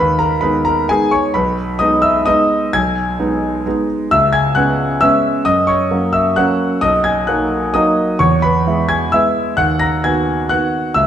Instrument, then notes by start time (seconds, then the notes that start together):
grand piano
Already playing: D#2 B4 B5
0.19 A#4 A#5
0.41 G#3 B3 D#4 B4 B5
0.65 A#4 A#5
0.89 G#3 B3 D#4 G#4 G#5
1.11 C#5 C#6
1.34 B1 B4 B5
1.79 G#3 B3 D#4 D#5 D#6
2.02 E5 E6
2.26 G#3 B3 D#4 D#5 D#6
2.73 B1 G#5 G#6
3.19 G#3 B3 D#4
3.66 G#3 B3 D#4
4.11 C#2 E5 E6
4.33 G#5 G#6
4.55 G#3 B3 C#4 F#5 F#6
5.01 G#3 B3 C#4 E5 E6
5.45 F#2 D#5 D#6
5.67 C#5 C#6
5.91 F#3 A#3 C#4
6.13 E5 E6
6.36 F#3 A#3 C#4 F#5 F#6
6.81 B1 D#5 D#6
7.04 G#5 G#6
7.27 F#3 A#3 D#4 F#5 F#6
7.74 F#3 A#3 D#4 D#5 D#6
8.19 E2 C#5 C#6
8.42 B4 B5
8.66 G#3 B3 E4
8.89 G#5 G#6
9.12 G#3 B3 E4 E5 E6
9.57 D#2 F#5 F#6
9.79 A#5 A#6
10.04 D#3 B3 F#4 G#5 G#6
10.49 D#3 B3 F#4 F#5 F#6
10.94 C#2 E5 E6